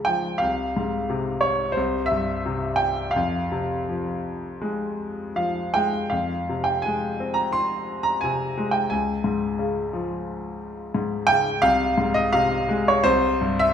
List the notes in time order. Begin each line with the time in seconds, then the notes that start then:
Already playing: C#2 C#3 F3
0.05 F3 G5
0.38 F5
0.42 C2
0.77 G#2
1.10 C3
1.41 C#5
1.72 C5
1.77 C2
2.06 E5
2.11 G2
2.46 C3
2.76 G5
3.11 F5
3.16 F2
3.52 C3
3.89 F3
4.62 G#3
5.36 F3 F5
5.74 G#3 G5
6.10 F2 F5
6.49 C3
6.64 G5
6.82 G#3 G#5
7.20 C4
7.34 A#5
7.53 C6
8.03 A#5
8.21 C3 G#5
8.57 G#3
8.71 G5
8.90 C#2 G#5
9.24 G#2
9.59 C#3
9.93 F3
10.95 G#2
11.27 C#3 G5
11.62 C2 F5
11.98 G#2
12.14 D#5
12.33 C3 F5
12.69 G#3
12.88 C#5
13.04 C2 C5
13.41 G2
13.59 E5